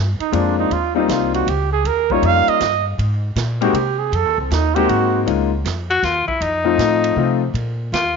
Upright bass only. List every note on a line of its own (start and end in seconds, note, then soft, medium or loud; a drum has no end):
0.00 0.18 G2 medium
0.20 muted upright bass stroke soft
0.33 0.70 F2 loud
0.70 1.08 D#2 medium
1.09 1.46 C2 medium
1.47 1.84 C#2 medium
1.84 2.22 D#2 medium
2.22 2.46 F2 medium
2.48 muted upright bass stroke soft
2.60 2.98 G2 loud
2.98 3.35 G#2 medium
3.36 3.73 A#2 loud
3.73 4.11 C3 loud
4.12 4.25 F2 loud
4.25 4.37 D#2 medium
4.38 4.50 C2 medium
4.51 4.88 D#2 loud
4.89 5.26 G#2 medium
5.26 5.64 C#2 medium
5.65 6.02 F2 medium
6.03 6.26 D#2 medium
6.28 muted upright bass stroke soft
6.41 6.78 F2 medium
6.78 7.15 A2 medium
7.16 7.53 C3 loud
7.54 7.91 A#2 medium
7.92 8.17 D#2 medium